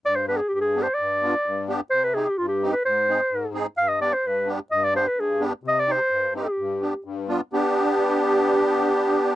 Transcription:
<<
  \new Staff \with { instrumentName = "Clarinet" } { \time 2/4 \tempo 4 = 128 d''16 c''16 b'16 aes'16 g'32 g'32 aes'8 c''16 | d''4. r8 | c''16 b'16 aes'16 g'16 f'16 g'8 b'16 | c''4. r8 |
f''16 ees''16 d''16 c''16 b'8 r8 | ees''16 d''16 c''16 b'16 aes'8 r8 | ees''16 d''16 c''4 g'8~ | g'4 r4 |
g'2~ | g'2 | }
  \new Staff \with { instrumentName = "Accordion" } { \time 2/4 r8 <b d' g'>16 r8. <b d' g'>16 r16 | r8 <b d' f'>16 r8. <b d' g'>16 r16 | r8 <c' ees' g'>16 r8. <c' ees' g'>16 r16 | r8 <c' ees' aes'>16 r8. <c' ees' aes'>16 r16 |
r8 <b d' g'>16 r8. <b d' g'>16 r16 | r8 <b d' g'>16 r8. <b d' g'>16 r16 | r8 <c' ees' g'>16 r8. <c' ees' g'>16 r16 | r8 <b d' g'>16 r8. <b d' f'>16 r16 |
<b d' g'>2~ | <b d' g'>2 | }
  \new Staff \with { instrumentName = "Accordion" } { \clef bass \time 2/4 g,4 g,4 | g,4 g,4 | c4 g,4 | aes,4 aes,4 |
g,4 g,4 | g,4 g,4 | c4 g,4 | g,4 g,4 |
r2 | r2 | }
>>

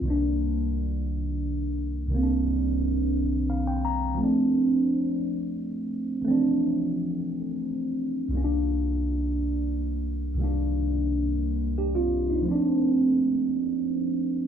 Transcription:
<<
  \new Staff \with { instrumentName = "Tine electric piano" } { \time 6/8 \key c \dorian \tempo 4. = 58 r2. | r2 f''16 g''16 bes''8 | r2. | r2. |
r2. | r2 <d' g'>16 <c' f'>8 <bes ees'>16~ | <bes ees'>16 r2 r8. | }
  \new Staff \with { instrumentName = "Tine electric piano" } { \time 6/8 \key c \dorian <c, ees g bes d'>2. | <c, ees g bes c' d'>2. | <f a c' d'>2. | <e f a c' d'>2. |
<c, ees g bes des' d'>2. | <c, ees g bes d'>2. | <f a c' d'>2. | }
>>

